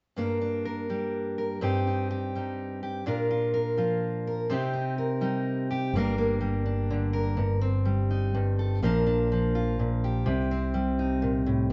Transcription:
0.16 G2 A#3 D4 A#4
0.41 D4
0.65 A#4
0.90 G3 D4
1.38 A#4
1.61 G2 C4 D#4 G4
1.87 D#4
2.11 G4
2.35 G3 D#4
2.83 G4
3.06 A#2 D4 F4 A#4
3.31 F4
3.54 A#4
3.77 F3 F4
4.27 A#4
4.50 C3 C4 D#4 G4
4.73 D#4
4.98 A#4
5.21 G3 D#4
5.71 G4
5.94 G1 G2 G3 A#3 D4
5.98 A#4
6.18 A#3
6.41 G3
6.66 D4
6.91 D3
7.13 A#4
7.37 G1 G2
7.61 C4
7.85 G3
8.11 D#4
8.35 G2
8.59 A4
8.82 A#1 A#2 F3 D4 F4 A#4
9.06 D4
9.32 F3
9.55 F4
9.79 A#2
10.04 G4
10.26 C2 C3
10.51 C4
10.74 G3
10.99 D#4
11.22 A#2
11.46 A2

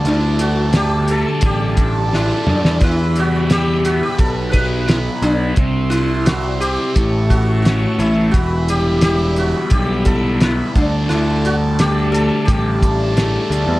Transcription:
Already playing: G3 A4 D5 A5
0.05 D2 D3 E4, closed hi-hat
0.39 G3 F#4, closed hi-hat
0.73 D4 G4, snare, closed hi-hat
1.08 A3 A4, closed hi-hat
1.41 A1 G3, kick, closed hi-hat
1.45 G4
1.77 D4, kick, closed hi-hat
2.13 A3 E4, snare
2.47 F#2 G3 D4, mid tom
2.64 E2, snare
2.80 E2 E3 E4 B4 E5 B5, kick, closed hi-hat
3.15 G3 F#4, closed hi-hat
3.50 E4 G4, snare, closed hi-hat
3.85 B3 F#4, closed hi-hat
4.03 G4
4.19 B1 B2 A4 F#5, kick, closed hi-hat
4.52 D#4 B4, kick, closed hi-hat
4.88 B3 E4, snare, closed hi-hat
5.22 B1 F#3 D4, closed hi-hat
5.56 C2 C3 C5 E5 C6, kick, closed hi-hat
5.90 G3 E4, closed hi-hat
6.25 E4 F#4, snare, closed hi-hat
6.61 C4 G4, closed hi-hat
6.95 A1 A2 C#5 A5 C#6, kick, closed hi-hat
7.30 E4 F#4, kick, closed hi-hat
7.62 C#4 F#4, closed hi-hat
7.66 snare
7.99 A1 A3 E4, closed hi-hat
8.31 E1 E3 F#4 B4 B5, kick, closed hi-hat
8.68 G3 G4, closed hi-hat
9.01 E4 G4, snare, closed hi-hat
9.36 B3 F#4, closed hi-hat
9.70 B1 G3 G4, kick, closed hi-hat
10.05 E4 A4, kick, closed hi-hat
10.41 B3 E4, snare, closed hi-hat
10.76 D2 D3 D4 A4 D5 A5, kick, closed hi-hat
11.09 D2 D3 E4, closed hi-hat
11.45 G3 F#4, closed hi-hat
11.79 D4 G4, snare, closed hi-hat
12.12 A3 A4, closed hi-hat
12.45 A1 G3 G4, kick, closed hi-hat
12.82 D4, kick, closed hi-hat
13.16 A3, snare, closed hi-hat
13.50 D2 G3, closed hi-hat
13.67 E2

